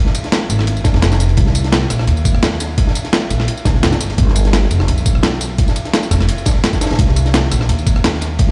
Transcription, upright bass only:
0.50 0.85 G#1 medium
0.85 0.93 F1 medium
0.94 1.36 F1 medium
1.37 1.89 C2 loud
1.90 2.06 A#1 medium
2.07 2.76 D#2 loud
3.30 3.46 A#1 medium
3.65 3.85 C2 loud
3.83 4.17 G1 medium
4.18 4.69 G1 loud
4.71 4.87 F1 medium
4.88 5.57 B1 loud
6.11 6.27 F1 medium
6.91 6.98 B1 medium
6.99 7.50 C2 loud
7.51 7.67 A#1 medium
7.69 8.38 D#2 loud

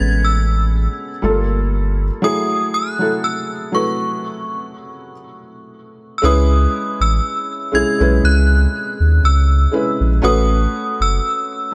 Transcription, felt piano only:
0.00 1.11 G#3 medium
0.00 1.24 B3 loud
0.00 1.24 C#4 loud
0.00 1.25 G#4 loud
0.00 1.24 A4 loud
0.00 1.12 B4 medium
1.22 2.04 G3 medium
1.22 1.30 A3 medium
1.22 2.05 F4 medium
1.22 2.05 A4 medium
1.29 2.08 A#3 medium
2.22 2.74 F#3 medium
2.22 2.74 A3 medium
2.22 2.75 E4 medium
2.22 2.75 G#4 loud
2.99 3.51 F#3 medium
2.99 3.51 A3 medium
2.99 3.52 E4 medium
2.99 3.52 A4 medium
3.72 5.11 F#3 medium
3.72 5.11 A3 medium
3.72 5.12 E4 medium
3.72 5.12 B4 medium
6.22 7.26 G#3 medium
6.22 7.26 C#4 medium
6.22 7.27 E4 medium
6.22 7.27 B4 loud
7.72 7.91 G#3 medium
7.72 7.91 C#4 medium
7.72 7.92 E4 medium
7.72 7.92 G#4 medium
7.99 9.18 G#3 medium
7.99 9.18 C#4 medium
7.99 9.19 E4 medium
7.99 9.19 B4 medium
9.72 10.08 G#3 medium
9.72 10.08 C#4 medium
9.72 10.09 E4 medium
9.72 10.09 B4 medium
10.22 11.26 A3 medium
10.22 11.26 C#4 medium
10.22 11.26 F#4 loud
10.22 11.27 B4 loud

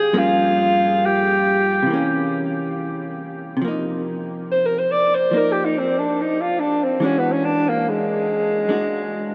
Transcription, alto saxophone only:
0.00 0.20 G#4 medium
0.18 1.07 F4 medium
1.06 2.45 G4 medium
4.52 4.67 C5 medium
4.66 4.80 A#4 medium
4.79 4.93 C5 medium
4.92 5.16 D5 medium
5.15 5.39 C5 medium
5.38 5.54 A#4 medium
5.52 5.67 G4 medium
5.65 5.80 D#4 medium
5.78 6.00 C4 medium
5.99 6.23 D4 medium
6.21 6.43 D#4 medium
6.42 6.61 F4 medium
6.60 6.85 D4 medium
6.84 7.07 C4 medium
7.05 7.21 C#4 medium
7.19 7.34 B3 medium
7.32 7.46 C#4 medium
7.44 7.71 D4 medium
7.69 7.91 A#3 medium
7.89 9.35 G#3 medium

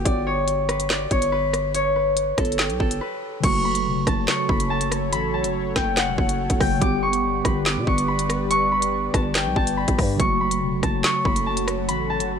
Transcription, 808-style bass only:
0.06 1.07 G1 loud
1.11 2.34 G1 loud
2.38 2.71 G1 loud
2.70 2.80 B1 loud
2.80 3.00 G1 loud
3.44 3.87 F#1 loud
3.86 3.98 E1 loud
3.96 4.06 F#1 loud
4.07 4.27 F#1 loud
4.49 5.14 F#1 loud
5.12 5.46 A1 loud
5.44 5.74 F#1 loud
5.76 6.09 F#1 loud
6.08 6.18 E1 loud
6.18 6.49 F#1 loud
6.50 6.60 F#1 loud
6.61 6.81 F#1 loud
6.82 7.42 G1 loud
7.45 7.78 G1 loud
7.77 7.87 B2 loud
7.87 9.10 G1 loud
9.14 9.47 G1 loud
9.46 9.56 B1 loud
9.56 9.87 G1 loud
9.88 9.98 G1 loud
9.99 10.19 G2 loud
10.20 10.63 F#1 loud
10.62 10.74 E1 loud
10.72 10.82 F#1 loud
10.83 11.03 F#1 loud
11.25 11.90 F#1 loud
11.89 12.22 A1 loud
12.20 12.39 F#1 loud

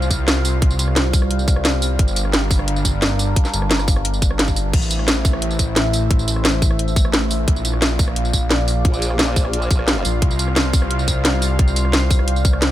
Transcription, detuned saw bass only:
0.00 0.61 C2 loud
0.62 1.98 C2 medium
1.99 3.35 G1 loud
3.53 4.72 G1 loud
4.73 6.09 A1 medium
6.11 7.46 A1 medium
7.48 8.84 A#1 medium
10.05 10.21 A#1 loud
10.22 11.58 C2 loud

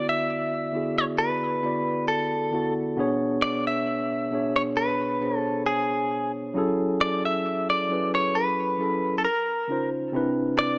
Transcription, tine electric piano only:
0.00 0.28 D3 loud
0.00 0.28 B3 loud
0.00 0.29 E4 loud
0.00 0.29 F#4 loud
0.00 0.30 D5 loud
0.72 1.33 D3 medium
0.72 1.34 B3 medium
0.72 1.34 E4 medium
0.72 1.35 F#4 medium
0.76 1.35 G#4 medium
1.62 2.23 D3 medium
1.62 2.23 B3 medium
1.62 2.24 E4 medium
1.62 2.24 F#4 medium
1.62 2.25 D5 medium
2.51 2.83 D3 medium
2.51 2.83 B3 medium
2.51 2.84 E4 medium
2.51 2.84 F#4 medium
2.55 2.85 A4 medium
2.96 3.86 B2 loud
2.96 3.86 B3 loud
2.96 3.87 D4 loud
2.96 3.87 G#4 loud
2.96 3.88 C#5 loud
4.30 4.92 B2 medium
4.30 4.92 B3 medium
4.30 4.93 D4 medium
4.30 4.93 G#4 medium
4.35 4.94 C#5 medium
5.20 6.10 B2 medium
5.20 6.10 B3 medium
5.20 6.11 D4 medium
5.20 6.11 G#4 medium
5.24 5.29 C5 medium
5.31 6.15 C#5 medium
6.54 7.44 F#3 loud
6.54 7.45 C#4 loud
6.54 7.45 E4 loud
6.54 7.46 G#4 loud
6.58 7.46 A4 loud
7.89 8.50 F#3 medium
7.89 8.50 C#4 medium
7.89 8.51 E4 medium
7.89 8.51 G#4 medium
7.93 8.52 B4 medium
8.78 9.23 F#3 medium
8.78 9.24 C#4 medium
8.78 9.24 E4 medium
8.78 9.25 G#4 medium
8.78 9.25 A4 medium
9.68 9.99 C#3 medium
9.68 10.00 C#4 medium
9.68 10.00 D#4 medium
9.68 10.01 F4 medium
9.72 10.01 C5 medium
10.12 10.78 C3 loud
10.12 10.78 C4 loud
10.12 10.78 D4 loud
10.12 10.78 E4 loud
10.12 10.78 B4 loud

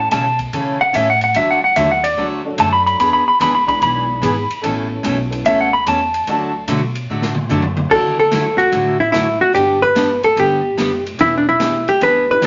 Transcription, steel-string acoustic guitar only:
0.11 0.24 C#3 medium
0.11 0.24 E3 medium
0.11 0.24 A3 medium
0.11 0.25 C#4 medium
0.11 0.25 A4 medium
0.53 0.76 C#3 medium
0.53 0.76 E3 medium
0.53 0.77 A3 medium
0.53 0.77 C#4 medium
0.53 0.77 A4 medium
0.93 1.06 C#3 medium
0.93 1.06 E3 medium
0.93 1.06 A3 medium
0.93 1.07 C#4 medium
0.93 1.07 A4 medium
1.35 1.58 D3 medium
1.35 1.58 F#3 medium
1.35 1.59 A3 medium
1.35 1.59 D4 medium
1.35 1.59 F#4 medium
1.76 1.88 D3 medium
1.76 1.89 F#3 medium
1.76 1.89 A3 medium
1.76 1.89 D4 medium
1.76 1.89 F#4 medium
2.17 2.40 D3 medium
2.17 2.41 F#3 medium
2.17 2.41 A3 medium
2.17 2.41 D4 medium
2.17 2.41 F#4 medium
2.58 2.70 D3 medium
2.58 2.70 F#3 medium
2.58 2.71 A3 medium
2.58 2.71 D4 medium
2.58 2.71 F#4 medium
3.00 3.22 E3 medium
3.00 3.23 B3 medium
3.00 3.23 D4 medium
3.00 3.23 G#4 medium
3.40 3.52 E3 medium
3.40 3.53 B3 medium
3.40 3.53 D4 medium
3.40 3.53 G#4 loud
3.81 4.04 E3 medium
3.81 4.05 B3 medium
3.81 4.04 D4 medium
3.81 4.05 G#4 medium
4.22 4.34 E3 medium
4.22 4.34 B3 medium
4.22 4.35 D4 medium
4.22 4.35 G#4 medium
4.63 4.86 B2 medium
4.63 4.86 E3 medium
4.63 4.87 A3 medium
4.63 4.87 C#4 medium
4.63 4.87 A4 medium
5.03 5.16 B2 medium
5.03 5.16 E3 medium
5.03 5.16 A3 medium
5.03 5.17 C#4 medium
5.03 5.17 A4 medium
5.45 5.68 B2 medium
5.45 5.68 E3 medium
5.45 5.68 A3 medium
5.45 5.69 C#4 medium
5.45 5.69 A4 medium
5.86 5.98 B2 medium
5.86 5.99 E3 medium
5.86 5.99 A3 medium
5.86 5.99 C#4 medium
5.86 5.99 A4 medium
6.27 6.50 D3 medium
6.27 6.50 F#3 medium
6.27 6.51 A3 medium
6.27 6.51 D4 medium
6.27 6.51 F#4 medium
6.68 6.80 D3 medium
6.68 6.80 F#3 medium
6.68 6.81 A3 medium
6.68 6.81 D4 medium
6.68 6.81 F#4 medium
7.10 7.33 D3 medium
7.10 7.33 F#3 medium
7.10 7.33 A3 medium
7.10 7.33 D4 medium
7.10 7.33 F#4 medium
7.50 7.62 D3 medium
7.50 7.62 F#3 medium
7.50 7.63 A3 medium
7.50 7.63 D4 medium
7.50 7.63 F#4 medium
7.91 8.14 D3 soft
7.91 8.14 F#3 medium
7.91 8.14 A3 medium
7.91 8.14 E4 medium
7.91 8.14 F#4 medium
8.31 8.44 D3 medium
8.31 8.44 F#3 medium
8.31 8.44 A3 medium
8.31 8.44 E4 medium
8.31 8.45 F#4 medium
8.72 8.95 D3 medium
8.72 8.95 F#3 medium
8.72 8.96 A3 soft
8.72 8.96 E4 medium
8.72 8.96 F#4 medium
9.12 9.25 D3 medium
9.12 9.25 F#3 medium
9.12 9.26 A3 medium
9.12 9.26 E4 medium
9.12 9.26 F#4 medium
9.53 9.77 D3 medium
9.53 9.77 G3 medium
9.53 9.78 B3 medium
9.53 9.77 D4 medium
9.53 9.78 G4 medium
9.95 10.08 D3 medium
9.95 10.08 G3 medium
9.95 10.08 B3 medium
9.95 10.08 D4 medium
9.95 10.08 G4 medium
10.36 10.59 D3 soft
10.36 10.60 G3 medium
10.36 10.60 B3 medium
10.36 10.60 D4 medium
10.36 10.60 G4 medium
10.77 10.90 D3 medium
10.77 10.90 G3 medium
10.77 10.90 B3 medium
10.77 10.90 D4 medium
10.77 10.90 G4 medium
11.19 11.42 E3 medium
11.19 11.42 B3 medium
11.19 11.42 D4 medium
11.19 11.42 G4 medium
11.60 11.72 E3 medium
11.60 11.72 B3 medium
11.60 11.72 D4 medium
11.60 11.73 G4 medium
12.01 12.24 E3 medium
12.01 12.24 B3 soft
12.01 12.24 D4 medium
12.01 12.25 G4 medium
12.42 12.47 E3 medium
12.42 12.47 B3 medium
12.42 12.47 D4 medium
12.42 12.47 G4 medium

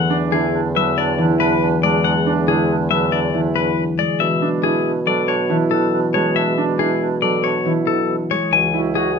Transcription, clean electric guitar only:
0.00 0.17 F#5 medium
0.32 0.60 G#4 medium
0.76 1.03 E5 medium
0.98 1.25 D5 medium
1.40 1.68 B4 medium
1.83 2.11 D5 medium
2.04 2.32 F#5 medium
2.48 2.76 G#4 medium
2.91 3.19 E5 medium
3.12 3.40 D5 medium
3.56 3.84 B4 medium
3.99 4.27 D5 medium
4.20 4.48 E5 medium
4.63 4.91 G#4 medium
5.07 5.35 D5 medium
5.28 5.56 C#5 medium
5.71 5.99 A4 medium
6.14 6.42 C#5 medium
6.36 6.64 E5 medium
6.79 7.07 G#4 medium
7.22 7.50 D5 medium
7.44 7.72 C#5 medium
7.87 8.15 A4 medium
8.31 8.59 C#5 medium
8.53 8.80 G#5 medium
8.95 9.19 G#4 medium

